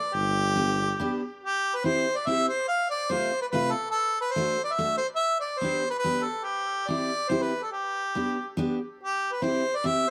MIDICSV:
0, 0, Header, 1, 4, 480
1, 0, Start_track
1, 0, Key_signature, 0, "major"
1, 0, Tempo, 420757
1, 176, Time_signature, 3, 2, 24, 8
1, 11523, End_track
2, 0, Start_track
2, 0, Title_t, "Harmonica"
2, 0, Program_c, 0, 22
2, 0, Note_on_c, 0, 74, 71
2, 164, Note_on_c, 0, 67, 91
2, 181, Note_off_c, 0, 74, 0
2, 1392, Note_off_c, 0, 67, 0
2, 1638, Note_on_c, 0, 67, 91
2, 1999, Note_on_c, 0, 71, 76
2, 2016, Note_off_c, 0, 67, 0
2, 2110, Note_on_c, 0, 72, 93
2, 2127, Note_off_c, 0, 71, 0
2, 2472, Note_on_c, 0, 74, 65
2, 2489, Note_off_c, 0, 72, 0
2, 2586, Note_on_c, 0, 76, 99
2, 2604, Note_off_c, 0, 74, 0
2, 2829, Note_off_c, 0, 76, 0
2, 2835, Note_on_c, 0, 72, 74
2, 3045, Note_off_c, 0, 72, 0
2, 3060, Note_on_c, 0, 77, 100
2, 3300, Note_off_c, 0, 77, 0
2, 3312, Note_on_c, 0, 74, 91
2, 3545, Note_on_c, 0, 72, 78
2, 3562, Note_off_c, 0, 74, 0
2, 3887, Note_off_c, 0, 72, 0
2, 3894, Note_on_c, 0, 71, 68
2, 3946, Note_off_c, 0, 71, 0
2, 4008, Note_on_c, 0, 71, 89
2, 4236, Note_on_c, 0, 69, 74
2, 4253, Note_off_c, 0, 71, 0
2, 4448, Note_off_c, 0, 69, 0
2, 4454, Note_on_c, 0, 69, 95
2, 4799, Note_off_c, 0, 69, 0
2, 4805, Note_on_c, 0, 71, 85
2, 4923, Note_on_c, 0, 72, 94
2, 4940, Note_off_c, 0, 71, 0
2, 5283, Note_off_c, 0, 72, 0
2, 5289, Note_on_c, 0, 74, 73
2, 5392, Note_on_c, 0, 76, 93
2, 5409, Note_off_c, 0, 74, 0
2, 5667, Note_off_c, 0, 76, 0
2, 5674, Note_on_c, 0, 72, 73
2, 5780, Note_off_c, 0, 72, 0
2, 5883, Note_on_c, 0, 76, 95
2, 6142, Note_off_c, 0, 76, 0
2, 6163, Note_on_c, 0, 74, 71
2, 6372, Note_on_c, 0, 72, 90
2, 6389, Note_off_c, 0, 74, 0
2, 6727, Note_off_c, 0, 72, 0
2, 6734, Note_on_c, 0, 71, 62
2, 6794, Note_off_c, 0, 71, 0
2, 6829, Note_on_c, 0, 71, 91
2, 7114, Note_on_c, 0, 69, 71
2, 7131, Note_off_c, 0, 71, 0
2, 7342, Note_on_c, 0, 67, 72
2, 7360, Note_off_c, 0, 69, 0
2, 7859, Note_on_c, 0, 74, 78
2, 7876, Note_off_c, 0, 67, 0
2, 8316, Note_on_c, 0, 72, 88
2, 8333, Note_off_c, 0, 74, 0
2, 8469, Note_on_c, 0, 71, 71
2, 8486, Note_off_c, 0, 72, 0
2, 8704, Note_on_c, 0, 69, 59
2, 8721, Note_off_c, 0, 71, 0
2, 8801, Note_off_c, 0, 69, 0
2, 8808, Note_on_c, 0, 67, 71
2, 9727, Note_off_c, 0, 67, 0
2, 10309, Note_on_c, 0, 67, 80
2, 10637, Note_on_c, 0, 71, 71
2, 10654, Note_off_c, 0, 67, 0
2, 10758, Note_on_c, 0, 72, 84
2, 10776, Note_off_c, 0, 71, 0
2, 11129, Note_on_c, 0, 74, 81
2, 11146, Note_off_c, 0, 72, 0
2, 11249, Note_on_c, 0, 76, 97
2, 11266, Note_off_c, 0, 74, 0
2, 11523, Note_off_c, 0, 76, 0
2, 11523, End_track
3, 0, Start_track
3, 0, Title_t, "Steel-string acoustic guitar"
3, 0, Program_c, 1, 25
3, 634, Note_on_c, 1, 59, 55
3, 639, Note_on_c, 1, 62, 60
3, 647, Note_on_c, 1, 67, 55
3, 875, Note_off_c, 1, 59, 0
3, 878, Note_off_c, 1, 62, 0
3, 882, Note_off_c, 1, 67, 0
3, 1137, Note_on_c, 1, 59, 68
3, 1147, Note_on_c, 1, 62, 63
3, 1153, Note_on_c, 1, 67, 69
3, 1373, Note_off_c, 1, 59, 0
3, 1378, Note_off_c, 1, 62, 0
3, 1379, Note_off_c, 1, 67, 0
3, 2098, Note_on_c, 1, 60, 54
3, 2113, Note_on_c, 1, 64, 44
3, 2120, Note_on_c, 1, 67, 58
3, 2334, Note_off_c, 1, 60, 0
3, 2341, Note_off_c, 1, 64, 0
3, 2345, Note_off_c, 1, 67, 0
3, 2587, Note_on_c, 1, 60, 50
3, 2597, Note_on_c, 1, 64, 54
3, 2606, Note_on_c, 1, 67, 62
3, 2819, Note_off_c, 1, 60, 0
3, 2824, Note_off_c, 1, 64, 0
3, 2828, Note_off_c, 1, 67, 0
3, 3532, Note_on_c, 1, 48, 55
3, 3544, Note_on_c, 1, 57, 52
3, 3550, Note_on_c, 1, 60, 50
3, 3555, Note_on_c, 1, 65, 52
3, 3765, Note_off_c, 1, 48, 0
3, 3771, Note_off_c, 1, 57, 0
3, 3774, Note_off_c, 1, 60, 0
3, 3777, Note_off_c, 1, 65, 0
3, 4022, Note_on_c, 1, 48, 61
3, 4028, Note_on_c, 1, 57, 50
3, 4036, Note_on_c, 1, 60, 55
3, 4044, Note_on_c, 1, 65, 58
3, 4248, Note_off_c, 1, 48, 0
3, 4248, Note_off_c, 1, 57, 0
3, 4254, Note_off_c, 1, 60, 0
3, 4259, Note_off_c, 1, 65, 0
3, 4973, Note_on_c, 1, 57, 66
3, 4981, Note_on_c, 1, 62, 52
3, 4995, Note_on_c, 1, 66, 76
3, 5200, Note_off_c, 1, 57, 0
3, 5204, Note_off_c, 1, 62, 0
3, 5211, Note_off_c, 1, 66, 0
3, 5458, Note_on_c, 1, 57, 66
3, 5464, Note_on_c, 1, 62, 52
3, 5474, Note_on_c, 1, 66, 63
3, 5682, Note_off_c, 1, 57, 0
3, 5685, Note_off_c, 1, 62, 0
3, 5690, Note_off_c, 1, 66, 0
3, 6404, Note_on_c, 1, 59, 53
3, 6423, Note_on_c, 1, 62, 50
3, 6438, Note_on_c, 1, 67, 59
3, 6637, Note_off_c, 1, 59, 0
3, 6647, Note_off_c, 1, 62, 0
3, 6655, Note_off_c, 1, 67, 0
3, 6893, Note_on_c, 1, 59, 55
3, 6900, Note_on_c, 1, 62, 51
3, 6906, Note_on_c, 1, 67, 59
3, 7128, Note_off_c, 1, 59, 0
3, 7132, Note_off_c, 1, 62, 0
3, 7134, Note_off_c, 1, 67, 0
3, 7854, Note_on_c, 1, 60, 55
3, 7869, Note_on_c, 1, 64, 43
3, 7876, Note_on_c, 1, 67, 53
3, 8092, Note_off_c, 1, 60, 0
3, 8100, Note_off_c, 1, 64, 0
3, 8103, Note_off_c, 1, 67, 0
3, 8321, Note_on_c, 1, 60, 55
3, 8339, Note_on_c, 1, 64, 51
3, 8346, Note_on_c, 1, 67, 64
3, 8565, Note_off_c, 1, 60, 0
3, 8573, Note_off_c, 1, 64, 0
3, 8577, Note_off_c, 1, 67, 0
3, 9299, Note_on_c, 1, 59, 53
3, 9306, Note_on_c, 1, 62, 46
3, 9317, Note_on_c, 1, 67, 55
3, 9533, Note_off_c, 1, 59, 0
3, 9533, Note_off_c, 1, 62, 0
3, 9541, Note_off_c, 1, 67, 0
3, 9777, Note_on_c, 1, 59, 72
3, 9789, Note_on_c, 1, 62, 68
3, 9799, Note_on_c, 1, 67, 75
3, 10009, Note_off_c, 1, 59, 0
3, 10015, Note_off_c, 1, 62, 0
3, 10020, Note_off_c, 1, 67, 0
3, 10745, Note_on_c, 1, 60, 58
3, 10754, Note_on_c, 1, 64, 49
3, 10765, Note_on_c, 1, 67, 56
3, 10971, Note_off_c, 1, 60, 0
3, 10975, Note_off_c, 1, 64, 0
3, 10980, Note_off_c, 1, 67, 0
3, 11224, Note_on_c, 1, 60, 60
3, 11236, Note_on_c, 1, 64, 54
3, 11244, Note_on_c, 1, 67, 62
3, 11452, Note_off_c, 1, 60, 0
3, 11459, Note_off_c, 1, 64, 0
3, 11459, Note_off_c, 1, 67, 0
3, 11523, End_track
4, 0, Start_track
4, 0, Title_t, "Tuba"
4, 0, Program_c, 2, 58
4, 163, Note_on_c, 2, 31, 83
4, 1108, Note_off_c, 2, 31, 0
4, 11523, End_track
0, 0, End_of_file